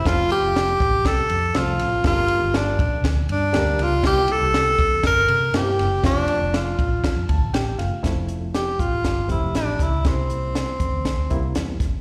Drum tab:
RD |xxxxxxxx|xxxxxxxx|xxxxxxxx|xxxxxxxx|
HH |--------|--------|--------|--------|
SD |o-o-o-oo|o-o-o-oo|o-o-o-oo|o-o-o-oo|
BD |o--oo---|o--oo---|o--oo---|o--ooo--|

RD |--------|--------|
HH |xxxxxxxx|xxxxxxxx|
SD |o-o-o-oo|o-o-o-oo|
BD |o--ooo-o|o--ooo-o|